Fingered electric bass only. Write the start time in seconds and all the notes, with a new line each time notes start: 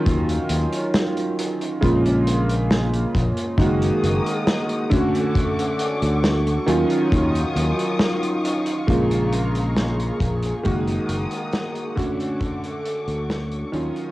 0.07 D#2
0.50 D#2
1.82 A#1
3.15 A#1
3.58 F#1
4.03 F#1
6.02 D2
6.68 D#2
7.12 D#2
7.56 D#2
8.88 A#1
10.20 A#1
10.66 F#1
11.09 F#1
13.07 D2
13.73 D#2